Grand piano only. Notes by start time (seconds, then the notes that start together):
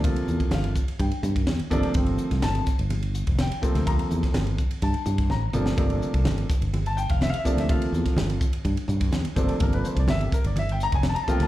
0.03 C3 F3 A3 A#3 F4
0.54 F5
1.00 G5
1.71 C3 F3 A3 A#3 D4
1.94 C3 F3 A3 A#3 C4 G5
2.43 A5
3.40 G5
3.62 C3 F3 A3 A#3 C4
3.86 C3 F3 A3 A#3 C4 A#5
4.83 A5
5.31 A#5
5.53 C3 F3 A3 A#3 D4
5.77 C3 F3 A3 A#3 D4
6.87 A5
6.97 G5
7.11 F5
7.23 E5
7.30 F5
7.38 E5
7.45 C3 F3 A3 A#3 D4 D5
7.59 E5
7.68 C3 F3 A3 A#3 F4 F5
9.36 C3 F3 A3 A#3 D4 C5
9.49 A4
9.59 C3 F3 A3 A#3 D4 A#4
9.74 B4
9.86 C5
9.99 D5
10.10 E5
10.22 G4
10.33 A#4
10.47 D5
10.59 E5
10.72 G5
10.83 A#5
10.95 G#5
11.09 A5
11.15 A#5
11.23 A5
11.27 C3 F3 A3 A#3 F4 G5
11.42 A5